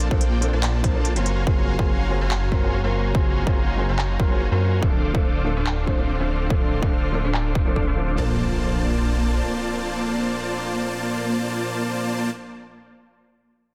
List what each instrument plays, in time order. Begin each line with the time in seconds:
Already playing: string section A#3 D4 A4
0.00 closed hi-hat
0.10 detuned saw bass A#1, felt piano F3 A#3 C4 D4 A4, supersaw synth A#3 F4 G5, kick
0.21 closed hi-hat
0.41 felt piano F3 A#3 C4 D4 A4, closed hi-hat
0.53 detuned saw bass A#1, supersaw synth A#3 F4 C5 D5 A5
0.63 clap, closed hi-hat
0.83 detuned saw bass A#1, felt piano F3 A#3 C4 D4 A#4, supersaw synth A#3 F4 C5 D5, kick, closed hi-hat
0.94 felt piano F3 A#3 C4 D4 A4
1.05 closed hi-hat
1.15 detuned saw bass F#1, felt piano F#3 A#3 C4 F4 A#4, supersaw synth F#4 C#5 F5 G#5 A#5 C6, closed hi-hat
1.26 string section F#3 A#3 F5, closed hi-hat
1.46 detuned saw bass F#1, felt piano F#3 A#3 C4 F4 G#4, supersaw synth F#4 C#5 F5 A#5, kick
1.78 detuned saw bass F#1, felt piano F#3 A#3 C4 F4 G#4, supersaw synth F#4 C#5 F5 A#5, kick
2.09 felt piano F#3 A#3 C4 F4 G#4
2.21 detuned saw bass F#1, supersaw synth F#4 C#5 F5 G#5 A#5 C6
2.31 clap
2.51 detuned saw bass F#1, felt piano F#3 A#3 C4 F4 A#4, supersaw synth F#4 C#5 F5 G#5 A#5 C6, kick
2.62 felt piano F#3 A#3 C4 F4 G#4
2.83 detuned saw bass F#1, felt piano F#3 A#3 C4 F4 A#4, supersaw synth F#4 C#5 F5 G#5 A#5 C6
2.94 string section D#4
3.14 detuned saw bass F#1, felt piano F#3 A#3 C4 F4 G#4, supersaw synth F#4 C#5 F5 G#5 A#5 C6, kick
3.46 detuned saw bass F#1, felt piano F#3 A#3 C4 F4 G#4, supersaw synth F#4 C#5 F5 A#5 C6, kick
3.77 felt piano F#3 A#3 C4 F4 G#4
3.89 detuned saw bass F#1, supersaw synth F#4 C#5 F5 G#5 A#5 C6
3.99 clap
4.19 detuned saw bass F#1, felt piano F#3 A#3 C4 F4 A#4, supersaw synth F#4, kick
4.30 felt piano F#3 A#3 C4 F4 G#4
4.51 detuned saw bass F#2, felt piano F#3 A#3 C4 F4 A#4, supersaw synth F#4 C#5 F5 G#5 A#5 C6
4.81 detuned saw bass D1, string section D3 C4 F4, felt piano F3 A3 C4 D4 A4, supersaw synth D4 A4 C5 F5 D6, kick
5.14 detuned saw bass D1, felt piano F3 A3 C4 D4 A4, supersaw synth D4 A4 D6, kick
5.44 felt piano F3 A3 C4 D4 A4
5.57 detuned saw bass D1, supersaw synth D4 A4 C5 F5 D6
5.66 clap
5.87 detuned saw bass D1, felt piano F3 A3 C4 D4 C5, supersaw synth D4 C5 F5, kick
5.98 felt piano F3 A3 C4 D4 A4
6.19 detuned saw bass D1, felt piano F3 A3 C4 D4 C5, supersaw synth D4 A4 C5 F5 D6
6.49 detuned saw bass D1, felt piano F3 A3 C4 D4 A4, supersaw synth D4, kick
6.82 detuned saw bass D1, felt piano F3 A3 C4 D4 A4, supersaw synth D4, kick
7.12 felt piano F3 A3 C4 D4 A4
7.24 detuned saw bass D1, supersaw synth D4 A4 C5 F5 D6
7.34 clap
7.55 detuned saw bass D1, supersaw synth D4 A4 C5 F5 D6, kick
7.65 felt piano F3 A3 C4 D4 A4
7.76 kick
7.87 detuned saw bass D1, supersaw synth D4 A4 C5 F5 D6
7.96 felt piano F3 A3 C4 D4 A4
8.15 detuned saw bass A#1, string section A#2 C4 D4 A4, felt piano F3 A#3 C4, supersaw synth A#3 F4 C5 D5 A5, impact
8.20 felt piano D4 A4